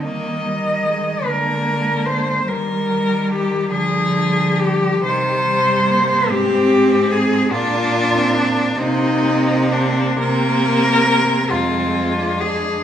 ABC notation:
X:1
M:6/8
L:1/16
Q:3/8=47
K:Eb
V:1 name="Cello"
e6 B4 c2 | B4 G2 A4 G2 | [K:Cm] c6 G4 A2 | F4 D2 E4 D2 |
B6 F4 A2 |]
V:2 name="Cello"
G,6 A,6 | G,12 | [K:Cm] G,6 C6 | D3 C3 B,6 |
C6 C3 D3 |]
V:3 name="Cello"
B,2 G,2 A,2 B,6 | G,6 F,6 | [K:Cm] E,2 G,2 B,2 C6 | D6 C6 |
B,6 A,6 |]
V:4 name="Cello" clef=bass
E,6 D,6 | E,6 D,6 | [K:Cm] C,6 A,,6 | B,,6 C,6 |
C,6 F,,6 |]